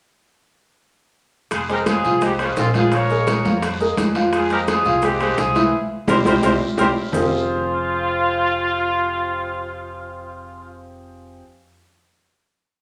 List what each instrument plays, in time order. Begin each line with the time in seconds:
1.51 upright bass F1, horn section F4 G#4, high bongo, high conga, high timbale, long guiro, maracas
1.69 grand piano G#3 G#4 C5, horn section G4 A#4, high conga, high timbale, maracas
1.86 horn section F4 G#4, high bongo, high conga, high timbale, short guiro, maracas
2.04 upright bass C2, grand piano F3 F4 F5, high conga, short guiro, maracas
2.21 grand piano G#3 G#4 C5, horn section D#4 G4, high bongo, high conga, high timbale, long guiro, maracas
2.39 grand piano G#3 G#4 C5, horn section C#4 F4, high conga, high timbale, maracas
2.57 upright bass A#1, horn section C4 F4, high bongo, low bongo, high conga, low timbale, short guiro, maracas
2.74 grand piano F3 F4 F5, horn section F4 G#4, high conga, high timbale, short guiro, maracas
2.92 grand piano F3 F4 F5, horn section A#4 C#5, high bongo, high conga, high timbale, long guiro, maracas
3.10 grand piano G#3 G#4 A#4, high bongo, maracas
3.27 high bongo, high conga, high timbale, short guiro, maracas
3.45 upright bass F2, grand piano F3 F4 F5, high conga, short guiro, maracas
3.62 high bongo, high conga, high timbale, long guiro, maracas
3.80 grand piano G#3 G#4 A#4, high bongo, high conga, maracas
3.97 upright bass F2, high bongo, low bongo, high conga, high timbale, short guiro, maracas
4.15 grand piano F3 F4 F5, high bongo, high conga, high timbale, short guiro, maracas
4.33 horn section F4 G#4, high bongo, high conga, high timbale, long guiro, maracas
4.50 grand piano G#3 G#4 C5, horn section G4 A#4, high conga, high timbale, maracas
4.68 horn section F4 G#4, high bongo, high conga, high timbale, short guiro, maracas
4.85 upright bass C2, grand piano F3 F4 F5, high conga, short guiro, maracas
5.02 grand piano G#3 G#4 C5, horn section C4 G4, high bongo, high conga, high timbale, long guiro, maracas
5.20 grand piano G#3 G#4 C5, high conga, high timbale, maracas
5.38 upright bass C2, horn section F4 G#4, high bongo, low bongo, high conga, short guiro, maracas
5.55 grand piano E3 E4 E5, high conga, high timbale, short guiro, maracas
6.07 upright bass C2, grand piano C4 E4 G4, horn section G4 A#4 C5, high bongo, high conga, high timbale, long guiro, maracas
6.25 upright bass C2, grand piano C4 E4 G4, horn section G4 A#4 C5, high bongo, high conga, high timbale, long guiro, maracas
6.42 upright bass C2, grand piano C4 E4 G4, horn section G4 A#4 C5, high bongo, high conga, high timbale, long guiro, maracas
6.77 upright bass C2, grand piano C4 E4 G4, horn section G4 A#4 C5, high bongo, high conga, high timbale, maracas
7.12 upright bass F1, grand piano F3 C4 F4 G4 G#4 C5, horn section F4, low bongo, low conga, low timbale, long guiro, maracas